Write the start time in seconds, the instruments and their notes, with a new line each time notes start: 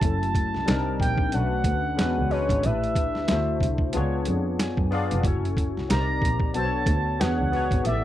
Already playing: analog synth lead A5
0.01 double bass F#1, tine electric piano F#3 A3 C#4 E4, kick, closed hi-hat
0.05 tine electric piano A4
0.23 closed hi-hat
0.35 kick, closed hi-hat
0.54 double bass C2, snare
0.66 double bass C2, tine electric piano G3 C4 D4 D#4, snare, closed hi-hat
0.71 tine electric piano A#4
1.00 double bass A#1, analog synth lead G5, kick, closed hi-hat
1.18 kick
1.32 double bass B1, tine electric piano A3 C#4 D4 F#4, analog synth lead F#5, closed hi-hat
1.37 tine electric piano B4
1.64 double bass D2, kick, closed hi-hat
1.96 double bass E2, tine electric piano G#3 C#4 D4 F#4, snare, closed hi-hat
2.01 tine electric piano B4
2.18 double bass C#2
2.30 tine electric piano G#3 C#4 D4 F#4, analog synth lead C#5, open hi-hat
2.34 tine electric piano B4
2.49 double bass G#1, kick, closed hi-hat
2.62 double bass A1, tine electric piano A3 D4 E4 G4, analog synth lead E5, closed hi-hat
2.67 tine electric piano B4
2.84 closed hi-hat
2.96 kick, closed hi-hat
3.15 double bass D2, snare
3.28 double bass D2, tine electric piano A3 D4 E4 F#4, snare, closed hi-hat
3.32 tine electric piano C5
3.60 double bass C2, kick, closed hi-hat
3.78 kick
3.93 double bass C#2, tine electric piano B3 D4 F4 G#4, closed hi-hat
3.97 tine electric piano C#5
4.25 double bass F2, closed hi-hat
4.59 double bass F#2, tine electric piano G#5, snare, closed hi-hat
4.77 double bass F#2, kick
4.91 tine electric piano B3 D4 F4 G#4 D5 F5, open hi-hat
5.11 double bass F1, closed hi-hat
5.23 double bass F#1, tine electric piano C#4 E4 F#4 A4, kick, closed hi-hat
5.28 tine electric piano C#5
5.45 closed hi-hat
5.57 kick, closed hi-hat
5.77 double bass C2, snare
5.89 double bass C2, tine electric piano C4 D#4 G4 A#4, analog synth lead A#5, snare, closed hi-hat
5.93 tine electric piano C5
6.00 tine electric piano D5
6.22 double bass A#1, kick, closed hi-hat
6.40 kick
6.54 double bass B1, tine electric piano B3 D4 F#4 A4, analog synth lead A5, closed hi-hat
6.58 tine electric piano C5
6.65 tine electric piano C#5
6.86 double bass D2, kick, closed hi-hat
7.19 double bass E2, tine electric piano B3 D4 F#4 G#4, analog synth lead F#5, snare, closed hi-hat
7.24 tine electric piano C#5
7.39 double bass C#2
7.52 tine electric piano B3 D4 F#4 G#4, open hi-hat
7.56 tine electric piano C#5
7.71 double bass G#1, kick, closed hi-hat
7.84 double bass A1, tine electric piano B3 E4 G4 A4, analog synth lead E5, closed hi-hat
7.88 tine electric piano D5